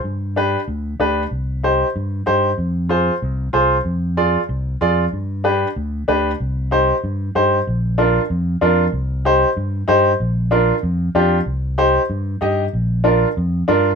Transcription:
<<
  \new Staff \with { instrumentName = "Upright piano" } { \time 4/4 \key g \phrygian \tempo 4 = 189 r4 <d' g' b'>8 r4. <d' g' b'>8 r8 | r4 <ees' g' c''>8 r4. <ees' g' c''>8 r8 | r4 <f' aes' c''>8 r4. <f' aes' c''>8 r8 | r4 <f' aes' d''>8 r4. <f' aes' d''>8 r8 |
r4 <d' g' b'>8 r4. <d' g' b'>8 r8 | \key c \minor r4 <ees' g' c''>8 r4. <ees' g' c''>8 r8 | r4 <d' f' bes'>8 r4. <d' f' bes'>8 r8 | r4 <ees' g' c''>8 r4. <ees' g' c''>8 r8 |
r4 <d' f' bes'>8 r4. <d' f' g'>8 r8 | r4 <ees' g' c''>8 r4. <ees' g' ees''>8 r8 | r4 <d' f' bes'>8 r4. <d' f' bes'>8 r8 | }
  \new Staff \with { instrumentName = "Fingered electric bass" } { \clef bass \time 4/4 \key g \phrygian g,2 d,4 d,4 | c,2 g,4 g,4 | f,2 c,4 c,4 | f,2 c,4 f,4 |
g,2 d,4 d,4 | \key c \minor c,2 g,4 g,4 | bes,,2 f,4 f,4 | c,2 g,4 g,4 |
bes,,2 f,4 f,4 | c,2 g,4 g,4 | bes,,2 f,4 g,4 | }
>>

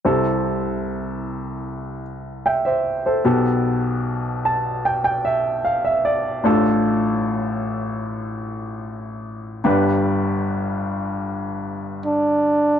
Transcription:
<<
  \new Staff \with { instrumentName = "Grand piano" } { \time 4/4 \key c \major \tempo 4 = 75 << { r2. <e'' g''>16 <c'' e''>8 <a' c''>16~ | <a' c''>16 r4 r16 a''8 g''16 g''16 e''8 f''16 e''16 d''8 | r1 | r1 | } \\ { <c, c c' e' a'>1 | <b,, b, b g' a'>1 | <a,, a, d' f' a'>1 | <g,, g, d' g' b'>1 | } >> }
  \new Staff \with { instrumentName = "Flugelhorn" } { \time 4/4 \key c \major r1 | r1 | r1 | r2. d'4 | }
>>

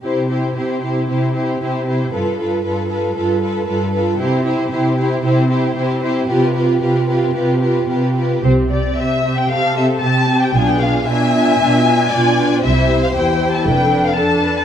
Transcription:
<<
  \new Staff \with { instrumentName = "Violin section" } { \time 4/4 \key c \major \tempo 4 = 115 c''8 c''8 c''8 c''8 c''8 c''8 c''8 c''8 | b'8 b'8 b'8 b'8 b'8 b'8 b'8 b'8 | c''8 c''8 c''8 c''8 c''8 c''8 c''8 c''8 | b'8 b'8 b'8 b'8 b'8 b'8 b'8 b'8 |
c''8 d''8 e''8. g''16 f''8 e''8 a''8. g''16 | gis''16 g''16 f''8 gis''2. | e''8. f''16 g''8. a''16 g''8. f''16 a''8. a''16 | }
  \new Staff \with { instrumentName = "Violin section" } { \time 4/4 \key c \major g'8 g'8 g'8 g'8 g'8 g'8 g'8 g'8 | a'8 a'8 a'8 a'8 a'8 a'8 a'8 a'8 | g'8 g'8 g'8 g'8 g'8 g'8 g'8 g'8 | g'8 g'8 g'8 g'8 g'8 g'8 g'8 g'8 |
r2 a'4 g'4 | gis'4 e''2 d''4 | c''2 b'4 a'4 | }
  \new Staff \with { instrumentName = "Viola section" } { \time 4/4 \key c \major << { r1 | r1 | r1 | r1 |
g'8 g'8 g'8 g'8 g'8 g'8 g'8 g'8 | f'8 f'8 f'8 f'8 f'8 f'8 f'8 f'8 | g'4 g'4 a'4 a'8 b'8 | } \\ { e'8 e'8 e'8 e'8 e'8 e'8 e'8 e'8 | f'8 f'8 f'8 f'8 f'8 f'8 f'8 f'8 | e'8 e'8 e'8 e'8 e'8 e'8 e'8 e'8 | f'8 f'8 f'8 f'8 f'8 f'8 f'8 f'8 |
c'8 c'8 c'8 c'8 c'8 c'8 c'8 c'8 | d'8 d'8 d'8 d'8 d'8 d'8 d'8 d'8 | e'4 e'4 d'4 d'4 | } >> }
  \new Staff \with { instrumentName = "Cello section" } { \clef bass \time 4/4 \key c \major c4 c4 c4 c4 | g,4 g,4 g,4 g,4 | c4 c4 c4 c4 | c4 c4 c4 c4 |
c4 c4 c4 c4 | b,4 b,4 b,4 b,4 | c4 e,4 f,2 | }
  \new Staff \with { instrumentName = "Double bass section" } { \clef bass \time 4/4 \key c \major r1 | r1 | r1 | r1 |
c,4 r2. | b,,4 r2. | c,4 r4 f,,4 r4 | }
>>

